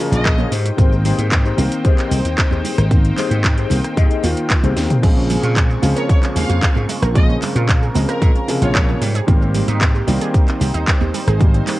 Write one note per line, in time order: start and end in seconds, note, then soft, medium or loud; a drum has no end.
0.00 0.50 C#3 medium
0.00 0.50 F3 medium
0.00 0.50 G#3 medium
0.00 0.48 A#3 medium
0.00 0.48 F4 medium
0.00 0.50 A#4 medium
0.00 0.48 C#6 medium
0.00 high bongo soft
0.12 0.45 A#1 loud
0.12 0.52 D#5 medium
0.12 closed hi-hat medium
0.12 shaker soft
0.25 kick loud
0.25 cross-stick medium
0.25 clap loud
0.25 closed hi-hat medium
0.25 shaker soft
0.38 0.51 F4 medium
0.38 0.51 G#4 medium
0.38 0.52 A#4 medium
0.38 0.52 C#5 loud
0.38 high conga medium
0.38 shaker soft
0.51 0.70 G#2 medium
0.51 0.94 D#4 medium
0.51 4.99 D#4 medium
0.51 0.94 G4 medium
0.51 0.95 G#4 medium
0.51 5.00 C5 medium
0.51 0.95 C5 loud
0.51 4.99 G5 medium
0.51 open hi-hat loud
0.51 high bongo soft
0.51 shaker medium
0.65 closed hi-hat medium
0.65 high bongo medium
0.65 shaker soft
0.77 1.11 G#1 loud
0.77 1.54 D#3 medium
0.77 1.55 A#3 medium
0.77 1.55 C4 loud
0.77 kick loud
0.77 closed hi-hat medium
0.77 high conga medium
0.77 shaker soft
0.92 shaker soft
1.05 1.25 D#4 loud
1.05 1.25 G4 loud
1.05 1.25 G#4 loud
1.05 1.26 C5 loud
1.05 open hi-hat loud
1.05 low conga medium
1.05 shaker medium
1.18 1.51 G#2 medium
1.18 closed hi-hat medium
1.18 high conga medium
1.18 shaker soft
1.32 kick loud
1.32 clap loud
1.32 closed hi-hat medium
1.32 shaker soft
1.44 1.65 D#4 medium
1.44 1.65 G4 medium
1.44 1.65 G#4 medium
1.44 1.65 C5 loud
1.44 shaker soft
1.57 1.67 C2 medium
1.57 2.87 D#3 loud
1.57 2.88 A#3 medium
1.57 2.88 C4 loud
1.57 open hi-hat loud
1.57 high bongo medium
1.57 high conga medium
1.57 shaker medium
1.72 closed hi-hat medium
1.72 shaker soft
1.84 2.18 D#4 loud
1.84 2.18 G4 loud
1.84 2.18 G#4 loud
1.84 2.18 C5 loud
1.84 kick loud
1.84 closed hi-hat medium
1.84 shaker soft
1.98 clap soft
1.98 closed hi-hat soft
1.98 shaker soft
2.10 2.20 C2 loud
2.10 open hi-hat loud
2.10 high conga medium
2.10 low conga medium
2.10 shaker medium
2.24 2.33 D#2 medium
2.24 closed hi-hat medium
2.24 shaker soft
2.38 kick loud
2.38 clap loud
2.38 closed hi-hat medium
2.38 shaker soft
2.51 2.60 D#2 medium
2.51 2.84 D#4 medium
2.51 2.84 G4 medium
2.51 2.85 G#4 medium
2.51 2.85 C5 loud
2.51 high conga medium
2.51 shaker soft
2.64 open hi-hat loud
2.64 low conga medium
2.64 shaker medium
2.78 3.11 G#1 loud
2.78 cross-stick medium
2.78 closed hi-hat medium
2.78 shaker soft
2.90 3.67 D#3 medium
2.90 3.68 A#3 medium
2.90 3.68 C4 medium
2.90 kick loud
2.90 closed hi-hat medium
2.90 high conga medium
2.90 shaker soft
3.05 closed hi-hat soft
3.05 shaker soft
3.17 3.37 D#4 loud
3.17 3.37 G4 loud
3.17 3.37 G#4 loud
3.17 3.38 C5 loud
3.17 clap soft
3.17 open hi-hat loud
3.17 low conga medium
3.17 shaker medium
3.30 3.64 G#2 medium
3.30 closed hi-hat medium
3.30 high conga medium
3.30 shaker soft
3.44 kick loud
3.44 clap loud
3.44 closed hi-hat medium
3.44 shaker soft
3.57 3.77 D#4 medium
3.57 3.77 G4 medium
3.57 3.77 G#4 medium
3.57 3.78 C5 loud
3.57 closed hi-hat soft
3.57 shaker soft
3.70 3.80 C2 medium
3.70 4.20 D#3 medium
3.70 4.21 A#3 medium
3.70 4.21 C4 medium
3.70 open hi-hat loud
3.70 high bongo medium
3.70 high conga medium
3.70 shaker medium
3.84 cross-stick medium
3.84 closed hi-hat medium
3.84 shaker soft
3.96 4.06 G#2 loud
3.96 4.30 D#4 loud
3.96 4.30 G4 loud
3.96 4.30 G#4 loud
3.96 4.31 D#5 loud
3.96 kick loud
3.96 closed hi-hat medium
3.96 shaker soft
4.11 closed hi-hat soft
4.11 shaker soft
4.23 4.33 D#2 medium
4.23 4.60 D#3 loud
4.23 4.60 A#3 medium
4.23 4.61 F4 loud
4.23 open hi-hat loud
4.23 high bongo medium
4.23 high conga medium
4.23 shaker medium
4.37 closed hi-hat medium
4.37 shaker soft
4.50 kick loud
4.50 cross-stick medium
4.50 clap loud
4.50 closed hi-hat medium
4.50 shaker soft
4.63 4.72 C2 medium
4.63 5.00 D#3 medium
4.63 5.00 A#3 medium
4.63 5.00 C4 medium
4.63 4.96 D#4 medium
4.63 4.97 G4 medium
4.63 4.97 G#4 medium
4.63 4.97 C5 medium
4.63 closed hi-hat soft
4.63 high conga medium
4.63 shaker soft
4.76 4.86 D#2 medium
4.76 snare medium
4.76 open hi-hat loud
4.76 high bongo soft
4.76 shaker medium
4.90 closed hi-hat medium
4.90 mid tom medium
4.90 high bongo medium
4.90 shaker soft
5.02 5.36 A#1 loud
5.02 5.79 C#3 medium
5.02 5.79 F3 medium
5.02 5.80 G#3 medium
5.02 5.12 G#3 medium
5.02 8.98 A#3 medium
5.02 5.80 C4 loud
5.02 8.98 F4 medium
5.02 7.14 G#4 medium
5.02 8.98 C#6 medium
5.02 kick loud
5.02 closed hi-hat medium
5.02 crash medium
5.02 high conga medium
5.02 shaker soft
5.17 5.25 C#4 medium
5.17 shaker soft
5.30 5.38 G#3 medium
5.30 open hi-hat loud
5.30 low conga medium
5.30 shaker medium
5.43 5.76 A#2 medium
5.43 5.51 F4 loud
5.43 closed hi-hat medium
5.43 high conga medium
5.43 shaker soft
5.56 5.65 G#3 medium
5.56 kick loud
5.56 clap loud
5.56 closed hi-hat medium
5.56 shaker soft
5.70 5.78 G#4 medium
5.70 shaker soft
5.82 5.92 C#2 medium
5.82 7.12 C#3 loud
5.82 7.12 F3 medium
5.82 5.88 G#3 loud
5.82 7.13 G#3 medium
5.82 7.13 C4 loud
5.82 open hi-hat loud
5.82 high bongo medium
5.82 high conga medium
5.82 shaker medium
5.96 6.01 A#4 loud
5.96 6.05 C#5 medium
5.96 closed hi-hat medium
5.96 shaker soft
6.09 6.18 G#3 medium
6.09 6.18 C#5 medium
6.09 kick loud
6.09 closed hi-hat medium
6.09 shaker soft
6.23 6.31 C#4 medium
6.23 clap soft
6.23 closed hi-hat soft
6.23 shaker soft
6.36 6.45 D#2 loud
6.36 6.44 G#3 medium
6.36 6.76 F5 medium
6.36 open hi-hat loud
6.36 high conga medium
6.36 low conga medium
6.36 shaker medium
6.49 6.58 F2 medium
6.49 6.57 F4 loud
6.49 closed hi-hat medium
6.49 shaker soft
6.62 6.71 G#3 medium
6.62 kick loud
6.62 clap loud
6.62 closed hi-hat medium
6.62 shaker soft
6.75 6.85 G#2 medium
6.75 6.84 G#4 medium
6.75 high conga medium
6.75 shaker soft
6.89 6.94 G#3 loud
6.89 open hi-hat loud
6.89 low conga medium
6.89 shaker medium
7.02 7.35 A#1 loud
7.02 7.07 A#4 loud
7.02 cross-stick medium
7.02 closed hi-hat medium
7.02 shaker soft
7.15 7.92 C#3 medium
7.15 7.92 F3 medium
7.15 7.24 G#3 medium
7.15 7.92 G#3 medium
7.15 7.93 C4 medium
7.15 9.00 A#4 medium
7.15 7.32 D#5 medium
7.15 kick loud
7.15 closed hi-hat medium
7.15 high conga loud
7.15 shaker soft
7.29 7.37 C#4 medium
7.29 shaker soft
7.42 7.51 G#3 medium
7.42 clap soft
7.42 open hi-hat loud
7.42 low conga loud
7.42 shaker medium
7.55 7.88 A#2 medium
7.55 7.64 F4 loud
7.55 closed hi-hat medium
7.55 high conga medium
7.55 shaker soft
7.69 7.77 G#3 medium
7.69 kick loud
7.69 clap loud
7.69 closed hi-hat medium
7.69 shaker soft
7.82 7.90 G#4 medium
7.82 shaker soft
7.94 8.04 C#2 medium
7.94 8.45 C#3 medium
7.94 8.45 F3 medium
7.94 8.00 G#3 loud
7.94 8.45 G#3 medium
7.94 8.45 C4 medium
7.94 open hi-hat loud
7.94 high bongo medium
7.94 high conga loud
7.94 shaker medium
8.08 8.48 A#4 loud
8.08 8.14 A#4 loud
8.08 cross-stick medium
8.08 closed hi-hat medium
8.08 shaker soft
8.22 8.31 A#2 loud
8.22 8.30 G#3 medium
8.22 kick loud
8.22 closed hi-hat medium
8.22 shaker soft
8.35 8.43 C#4 medium
8.35 closed hi-hat soft
8.35 shaker soft
8.48 9.00 C3 loud
8.48 9.00 C#3 medium
8.48 9.00 F3 medium
8.48 9.00 G#3 medium
8.48 8.57 G#3 medium
8.48 open hi-hat loud
8.48 high bongo medium
8.48 high conga medium
8.48 shaker medium
8.62 8.94 A#1 loud
8.62 8.70 F4 loud
8.62 9.01 C#5 medium
8.62 closed hi-hat medium
8.62 shaker soft
8.75 8.83 G#3 medium
8.75 kick loud
8.75 cross-stick medium
8.75 clap loud
8.75 closed hi-hat medium
8.75 shaker soft
8.88 8.96 G#4 medium
8.88 high conga medium
8.88 shaker soft
9.01 9.19 G#2 medium
9.01 9.06 G3 loud
9.01 11.80 D#4 medium
9.01 11.12 G4 medium
9.01 11.80 C5 medium
9.01 open hi-hat loud
9.01 high bongo soft
9.01 shaker medium
9.14 9.20 G#4 loud
9.14 closed hi-hat medium
9.14 high bongo medium
9.14 shaker soft
9.27 9.61 G#1 loud
9.27 10.04 D#3 medium
9.27 10.04 G3 medium
9.27 9.36 G3 medium
9.27 10.05 A#3 medium
9.27 10.05 C4 loud
9.27 kick loud
9.27 closed hi-hat medium
9.27 high conga loud
9.27 shaker soft
9.42 9.50 C4 medium
9.42 shaker soft
9.55 9.63 G3 medium
9.55 open hi-hat loud
9.55 low conga medium
9.55 shaker medium
9.68 10.01 G#2 loud
9.68 9.76 D#4 loud
9.68 closed hi-hat medium
9.68 high conga medium
9.68 shaker soft
9.81 9.89 G3 medium
9.81 kick loud
9.81 clap loud
9.81 closed hi-hat medium
9.81 shaker soft
9.95 10.03 G4 medium
9.95 shaker soft
10.07 10.17 C2 medium
10.07 11.37 D#3 loud
10.07 11.37 G3 medium
10.07 10.13 G3 loud
10.07 11.37 A#3 medium
10.07 11.38 C4 loud
10.07 open hi-hat loud
10.07 high bongo medium
10.07 high conga loud
10.07 shaker medium
10.21 10.26 G#4 loud
10.21 closed hi-hat medium
10.21 shaker soft
10.34 10.42 G3 medium
10.34 kick loud
10.34 closed hi-hat medium
10.34 shaker soft
10.48 10.56 C4 medium
10.48 clap soft
10.48 closed hi-hat soft
10.48 shaker soft
10.60 10.70 C2 loud
10.60 10.69 G3 medium
10.60 open hi-hat loud
10.60 high conga medium
10.60 low conga medium
10.60 shaker medium
10.74 10.83 D#2 medium
10.74 10.82 D#4 loud
10.74 closed hi-hat medium
10.74 shaker soft
10.87 10.96 G3 medium
10.87 kick loud
10.87 clap loud
10.87 closed hi-hat medium
10.87 shaker soft
11.01 11.10 D#2 medium
11.01 11.09 G4 medium
11.01 high conga loud
11.01 shaker soft
11.14 11.19 G3 loud
11.14 11.80 G#5 medium
11.14 open hi-hat loud
11.14 low conga medium
11.14 shaker medium
11.27 11.60 G#1 loud
11.27 11.32 G#4 loud
11.27 cross-stick medium
11.27 closed hi-hat medium
11.27 shaker soft
11.39 11.80 D#3 medium
11.39 11.80 G3 medium
11.39 11.49 G3 medium
11.39 11.80 A#3 medium
11.39 11.80 C4 medium
11.39 kick loud
11.39 closed hi-hat medium
11.39 high conga loud
11.39 shaker soft
11.54 11.62 C4 medium
11.54 closed hi-hat soft
11.54 shaker soft
11.67 11.75 G3 medium
11.67 clap soft
11.67 open hi-hat loud
11.67 low conga medium
11.67 shaker medium